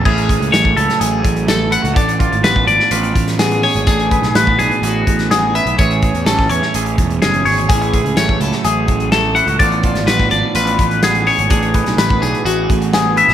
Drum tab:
CC |x---------------|----------------|----------------|----------------|
HH |-xxxx-xxx-xxx-xx|xxxxx-x-xxxxxxox|xxxxx-xxx-xxx-xx|xxxxx-x-xxxxxxox|
SD |----o--o----o---|----o--o---oo---|---oo------oo---|----oo-o----o---|
BD |o-o--o----o-----|o-o--o----o-----|o-o--o----o-----|o-o--o----o-----|

CC |----------------|----------------|----------------|
HH |xxxxx-xxx-xxx-xx|xxxxx-x-xxxxxxox|xxxxx-xxx-xxx-xx|
SD |----o--o----o---|---ooo------o---|---oo-------o--o|
BD |o-o--o----o-----|o-o--o----o-----|o-o--o----o-----|